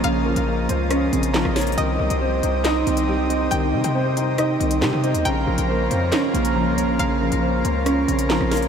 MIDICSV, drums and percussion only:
0, 0, Header, 1, 2, 480
1, 0, Start_track
1, 0, Tempo, 434783
1, 41, Time_signature, 4, 2, 24, 8
1, 9585, End_track
2, 0, Start_track
2, 0, Title_t, "Drums"
2, 43, Note_on_c, 9, 42, 82
2, 153, Note_off_c, 9, 42, 0
2, 401, Note_on_c, 9, 42, 76
2, 511, Note_off_c, 9, 42, 0
2, 765, Note_on_c, 9, 42, 85
2, 875, Note_off_c, 9, 42, 0
2, 1000, Note_on_c, 9, 42, 88
2, 1001, Note_on_c, 9, 37, 102
2, 1110, Note_off_c, 9, 42, 0
2, 1111, Note_off_c, 9, 37, 0
2, 1246, Note_on_c, 9, 42, 74
2, 1357, Note_off_c, 9, 42, 0
2, 1358, Note_on_c, 9, 42, 86
2, 1469, Note_off_c, 9, 42, 0
2, 1482, Note_on_c, 9, 38, 120
2, 1486, Note_on_c, 9, 39, 94
2, 1592, Note_off_c, 9, 38, 0
2, 1597, Note_off_c, 9, 39, 0
2, 1603, Note_on_c, 9, 37, 69
2, 1713, Note_off_c, 9, 37, 0
2, 1722, Note_on_c, 9, 38, 68
2, 1722, Note_on_c, 9, 42, 80
2, 1726, Note_on_c, 9, 46, 62
2, 1782, Note_off_c, 9, 42, 0
2, 1782, Note_on_c, 9, 42, 70
2, 1832, Note_off_c, 9, 38, 0
2, 1836, Note_off_c, 9, 46, 0
2, 1842, Note_off_c, 9, 42, 0
2, 1842, Note_on_c, 9, 42, 58
2, 1902, Note_off_c, 9, 42, 0
2, 1902, Note_on_c, 9, 42, 44
2, 1963, Note_off_c, 9, 42, 0
2, 1963, Note_on_c, 9, 42, 79
2, 2073, Note_off_c, 9, 42, 0
2, 2321, Note_on_c, 9, 42, 77
2, 2432, Note_off_c, 9, 42, 0
2, 2685, Note_on_c, 9, 42, 82
2, 2795, Note_off_c, 9, 42, 0
2, 2920, Note_on_c, 9, 42, 87
2, 2921, Note_on_c, 9, 38, 119
2, 2926, Note_on_c, 9, 39, 98
2, 3031, Note_off_c, 9, 42, 0
2, 3032, Note_off_c, 9, 38, 0
2, 3036, Note_off_c, 9, 39, 0
2, 3167, Note_on_c, 9, 42, 74
2, 3277, Note_off_c, 9, 42, 0
2, 3279, Note_on_c, 9, 42, 85
2, 3389, Note_off_c, 9, 42, 0
2, 3646, Note_on_c, 9, 42, 79
2, 3756, Note_off_c, 9, 42, 0
2, 3882, Note_on_c, 9, 42, 80
2, 3992, Note_off_c, 9, 42, 0
2, 4239, Note_on_c, 9, 42, 79
2, 4349, Note_off_c, 9, 42, 0
2, 4603, Note_on_c, 9, 42, 83
2, 4713, Note_off_c, 9, 42, 0
2, 4838, Note_on_c, 9, 42, 84
2, 4839, Note_on_c, 9, 37, 101
2, 4949, Note_off_c, 9, 42, 0
2, 4950, Note_off_c, 9, 37, 0
2, 5085, Note_on_c, 9, 42, 73
2, 5196, Note_off_c, 9, 42, 0
2, 5197, Note_on_c, 9, 42, 86
2, 5308, Note_off_c, 9, 42, 0
2, 5321, Note_on_c, 9, 38, 115
2, 5325, Note_on_c, 9, 39, 90
2, 5431, Note_off_c, 9, 38, 0
2, 5436, Note_off_c, 9, 39, 0
2, 5561, Note_on_c, 9, 42, 47
2, 5671, Note_off_c, 9, 42, 0
2, 5681, Note_on_c, 9, 42, 79
2, 5791, Note_off_c, 9, 42, 0
2, 5801, Note_on_c, 9, 42, 80
2, 5912, Note_off_c, 9, 42, 0
2, 6159, Note_on_c, 9, 42, 80
2, 6270, Note_off_c, 9, 42, 0
2, 6524, Note_on_c, 9, 42, 82
2, 6634, Note_off_c, 9, 42, 0
2, 6758, Note_on_c, 9, 42, 85
2, 6759, Note_on_c, 9, 38, 122
2, 6764, Note_on_c, 9, 39, 96
2, 6869, Note_off_c, 9, 42, 0
2, 6870, Note_off_c, 9, 38, 0
2, 6874, Note_off_c, 9, 39, 0
2, 7006, Note_on_c, 9, 42, 74
2, 7116, Note_off_c, 9, 42, 0
2, 7118, Note_on_c, 9, 42, 87
2, 7228, Note_off_c, 9, 42, 0
2, 7485, Note_on_c, 9, 42, 79
2, 7596, Note_off_c, 9, 42, 0
2, 7722, Note_on_c, 9, 42, 81
2, 7832, Note_off_c, 9, 42, 0
2, 8079, Note_on_c, 9, 42, 75
2, 8190, Note_off_c, 9, 42, 0
2, 8443, Note_on_c, 9, 42, 81
2, 8554, Note_off_c, 9, 42, 0
2, 8679, Note_on_c, 9, 42, 87
2, 8680, Note_on_c, 9, 37, 102
2, 8789, Note_off_c, 9, 42, 0
2, 8790, Note_off_c, 9, 37, 0
2, 8926, Note_on_c, 9, 42, 77
2, 9036, Note_off_c, 9, 42, 0
2, 9038, Note_on_c, 9, 42, 87
2, 9149, Note_off_c, 9, 42, 0
2, 9161, Note_on_c, 9, 38, 117
2, 9165, Note_on_c, 9, 39, 91
2, 9271, Note_off_c, 9, 38, 0
2, 9276, Note_off_c, 9, 39, 0
2, 9282, Note_on_c, 9, 37, 68
2, 9392, Note_off_c, 9, 37, 0
2, 9401, Note_on_c, 9, 38, 67
2, 9401, Note_on_c, 9, 42, 78
2, 9405, Note_on_c, 9, 46, 62
2, 9461, Note_off_c, 9, 42, 0
2, 9461, Note_on_c, 9, 42, 67
2, 9511, Note_off_c, 9, 38, 0
2, 9515, Note_off_c, 9, 46, 0
2, 9521, Note_off_c, 9, 42, 0
2, 9521, Note_on_c, 9, 42, 56
2, 9585, Note_off_c, 9, 42, 0
2, 9585, End_track
0, 0, End_of_file